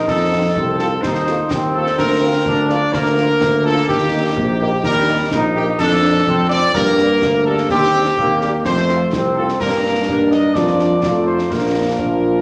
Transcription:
Already playing: trombone section D#4
0.07 tuba F2, trumpet section A4, concert bass drum, snare
0.31 french horn section F3 C4 F4
0.55 tuba C2, trombone section C4, concert bass drum
0.79 french horn section F3 C4 F4, trumpet section A4, snare
1.02 tuba D#2, trombone section D#4, trumpet section C5, concert bass drum, snare
1.15 snare
1.27 french horn section F3 A3 F4, snare
1.50 tuba D#2, trombone section C4, concert bass drum, snare
1.74 french horn section F3 A3 F4, trumpet section A4
1.86 snare
1.98 tuba D2, trumpet section A#4, concert bass drum, snare, crash
2.22 french horn section F3 A#3 F4
2.46 tuba D2, trombone section D4, concert bass drum
2.69 french horn section F3 A#3 F4, trumpet section D5, snare
2.93 tuba D2, trombone section A#3, trumpet section A#4, concert bass drum, snare
3.06 snare
3.17 french horn section F3 A#3 F4, snare
3.41 tuba D2, concert bass drum, snare
3.65 french horn section F3 A#3 F4, trumpet section A4
3.77 snare
3.88 tuba D#2, trumpet section G4, concert bass drum, snare
4.12 french horn section A#3 D#4
4.36 tuba A#1, concert bass drum
4.60 french horn section A#3 D#4, trumpet section G4
4.83 tuba D#2, trombone section G3, trumpet section A#4, concert bass drum, snare
5.08 french horn section A#3 D#4
5.31 tuba A#1, trombone section D#4, concert bass drum, snare
5.55 french horn section A#3 D#4, trumpet section G4
5.79 tuba F2, trombone section D4, trumpet section A4, concert bass drum, snare, crash
6.03 french horn section A3 D4
6.27 tuba F2, trombone section C4, concert bass drum
6.49 french horn section A3 D4, trumpet section D5, snare
6.74 tuba G2, trombone section A#3, trumpet section A#4, concert bass drum, snare
6.86 snare
6.98 french horn section G3 D4 G4, snare
7.22 tuba D2, concert bass drum, snare
7.46 french horn section G3 D4 G4, trumpet section A4
7.58 snare
7.69 tuba D#2, trombone section C4, trumpet section G4, concert bass drum, snare
7.94 french horn section G3 C4 G4
8.17 tuba D#2, trombone section A#3, concert bass drum
8.41 french horn section G3 C4 G4, trumpet section G4, snare
8.65 tuba F2, trombone section A3, trumpet section C5, concert bass drum, snare
8.77 snare
8.89 french horn section A3 C4 F4, snare
9.13 tuba C2, trombone section C4, concert bass drum, snare
9.35 french horn section A3 C4 F4, trumpet section A4
9.49 snare
9.60 tuba G2, trombone section A#3, french horn section A#3 D4, trumpet section A#4, concert bass drum, snare, crash
10.08 tuba G2, trombone section D4, french horn section D#4, concert bass drum
10.31 trumpet section D#5, snare
10.55 tuba F2, french horn section A#3 D4 F4, trumpet section D5, concert bass drum, snare
10.67 snare
10.79 snare
11.03 tuba F2, trombone section A3, french horn section A3 D#4 F4, concert bass drum, snare
11.27 trumpet section C5
11.39 snare
11.50 tuba A#1, trombone section A#3, french horn section A#3 D4 F4, trumpet section A#4, concert bass drum, snare
11.98 tuba A#1, euphonium F3, concert bass drum

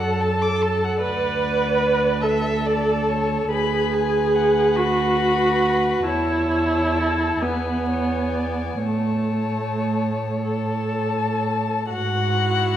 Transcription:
Already playing: cello F#2, viola A4, violin A5
0.00 violin F#5
0.21 violin A5
0.42 violin D6
0.62 violin A5
0.84 violin F#5
1.01 cello D2, viola B4, violin D5 F#5
2.21 viola A4, violin E5 A5
2.66 violin D5
3.09 violin C#5
3.51 cello D2, viola G#4, violin B4 B5
3.93 violin G#5
4.35 violin F#5
4.76 viola F#4, violin B5
6.07 cello E2, viola E4, violin C#5 A5
6.51 violin C#5
6.97 violin A4
7.40 cello E2, viola B3, violin B4 G#5
7.88 violin C#5
8.34 violin D5
8.85 cello A2, viola A3, violin C#5 A5
10.43 viola A4, violin A5
11.90 cello G#2, viola F#4, violin F#5
12.35 violin E4

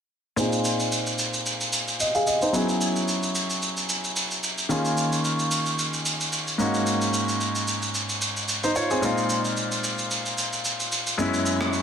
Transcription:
0.36 grand piano A#2 C4 D#4 F4 G#4, shaker
0.52 shaker
0.65 shaker
0.80 shaker
0.92 shaker
1.06 shaker
1.19 shaker
1.33 shaker
1.46 shaker
1.61 shaker
1.73 shaker
1.88 shaker
2.00 grand piano D#5, shaker
2.15 grand piano G#4 F5, shaker
2.27 grand piano D#5, shaker
2.42 grand piano D#4 C5, shaker
2.53 grand piano F#3 B3 C#4 E4 G#4, shaker
2.69 shaker
2.81 shaker
2.96 shaker
3.08 shaker
3.23 shaker
3.35 shaker
3.50 shaker
3.62 shaker
3.77 shaker
3.89 shaker
4.04 shaker
4.16 shaker
4.31 shaker
4.43 shaker
4.58 shaker
4.69 grand piano D#3 A#3 C#4 F4 G#4, shaker
4.85 shaker
4.97 shaker
5.12 shaker
5.24 shaker
5.39 shaker
5.51 shaker
5.66 shaker
5.79 shaker
5.93 shaker
6.06 shaker
6.20 shaker
6.32 shaker
6.47 shaker
6.58 grand piano G#2 A#3 C#4 D#4 F#4, shaker
6.74 shaker
6.86 shaker
7.01 shaker
7.13 shaker
7.28 shaker
7.41 shaker
7.55 shaker
7.67 shaker
7.82 shaker
7.95 shaker
8.09 shaker
8.21 shaker
8.36 shaker
8.48 shaker
8.63 grand piano D#4 C5, shaker
8.76 grand piano F4 C#5, shaker
8.90 grand piano C4 G#4, shaker
9.01 grand piano A#2 G#3 C4 D#4 F4, shaker
9.18 shaker
9.30 shaker
9.45 shaker
9.57 shaker
9.72 shaker
9.84 shaker
9.98 shaker
10.11 shaker
10.26 shaker
10.38 shaker
10.53 shaker
10.65 shaker
10.80 shaker
10.92 shaker
11.07 shaker
11.18 grand piano F#2 G#3 B3 C#4 E4, shaker
11.34 shaker
11.46 shaker
11.61 cross-stick, shaker
11.73 shaker

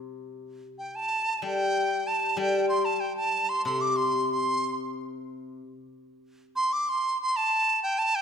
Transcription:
Already playing: guzheng C3
0.78 dizi G5
0.95 dizi A5
1.37 dizi A5
1.42 guzheng G3, dizi G5
2.07 dizi A5
2.37 guzheng G3, dizi G5
2.69 dizi C6
2.85 dizi A5
3.00 dizi G5
3.16 dizi A5
3.49 dizi C6
3.65 guzheng C3, dizi C6
3.81 dizi D6
3.96 dizi C6
4.32 dizi C6
6.56 dizi C6
6.73 dizi D6
6.89 dizi C6
7.22 dizi C6
7.36 dizi A5
7.83 dizi G5
7.99 dizi A5
8.15 dizi G5

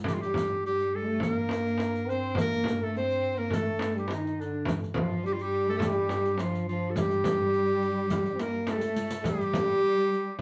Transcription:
0.04 double bass G2, cello section G3, trombone G3, clarinet G4, frame drum, darbuka dum
0.08 riq
0.14 clarinet F4
0.21 cello section G3, trombone G3, clarinet G4, riq
0.34 riq, frame drum, darbuka dum
0.66 trombone G3, cello section G3, clarinet G4, riq
0.80 riq, darbuka ka
0.94 cello section A3, clarinet A4
1.20 cello section A#3, trombone A#3, clarinet A#4, riq, frame drum, darbuka dum
1.37 darbuka ka
1.49 riq, darbuka tek, frame drum
1.67 riq
1.78 riq, darbuka tek, frame drum
1.93 riq, darbuka ka
2.08 trombone C4, cello section C4, clarinet C5, riq, darbuka ka
2.23 darbuka ka
2.35 trombone A#3, riq, frame drum, darbuka dum
2.40 cello section A#3, clarinet A#4
2.53 riq
2.64 frame drum
2.68 riq
2.82 trombone A3, cello section A3, clarinet A4
2.96 trombone C4, cello section C4, clarinet C5, riq
3.11 riq
3.38 trombone A#3, cello section A#3, clarinet A#4
3.50 trombone A3, cello section A3, clarinet A4, riq, frame drum, darbuka dum
3.67 darbuka ka
3.79 riq, darbuka tek, frame drum
3.95 trombone G3, cello section G3, riq
3.99 clarinet G4
4.08 trombone D#3, darbuka tek, frame drum
4.12 cello section D#3, clarinet D#4, riq
4.26 riq, darbuka ka
4.40 cello section D3, trombone D3, clarinet D4, riq, darbuka ka
4.54 darbuka ka
4.65 double bass G2, riq, frame drum, darbuka dum
4.84 riq
4.94 trombone F3, cello section F3, frame drum, darbuka dum
5.00 clarinet F4
5.24 cello section G3, trombone G3, clarinet G4, riq
5.33 cello section G3, clarinet F4
5.38 trombone G3, riq, darbuka ka
5.42 clarinet G4
5.67 cello section A3, clarinet A4
5.73 cello section A3, clarinet G4
5.78 cello section G3, trombone G3, clarinet A4, riq, frame drum
5.83 clarinet G4, darbuka dum
5.97 darbuka ka
6.09 riq, frame drum
6.25 riq
6.38 cello section F3, trombone F3, clarinet F4, riq, darbuka tek, frame drum
6.55 riq, darbuka ka
6.68 cello section F3, trombone F3, clarinet F4, riq, darbuka ka
6.84 darbuka ka
6.91 clarinet A4
6.96 cello section G3, trombone G3, clarinet G4, riq, frame drum, darbuka dum
7.11 riq, darbuka ka
7.24 riq, frame drum, darbuka dum
7.54 riq, darbuka ka
7.67 riq, darbuka ka
7.83 riq
8.10 riq, darbuka dum, frame drum
8.26 riq
8.33 trombone C4
8.39 cello section A#3, trombone A#3, clarinet A#4, riq, darbuka tek, frame drum
8.67 trombone A3, cello section A3, riq, darbuka tek, frame drum
8.71 clarinet A4
8.76 trombone G3
8.81 trombone A3, riq
8.96 riq
9.10 riq
9.24 trombone G3, cello section G3, clarinet G4, riq, frame drum, darbuka dum
9.41 riq
9.54 riq, frame drum, darbuka dum
9.84 darbuka ka
9.98 riq
10.12 riq, darbuka ka

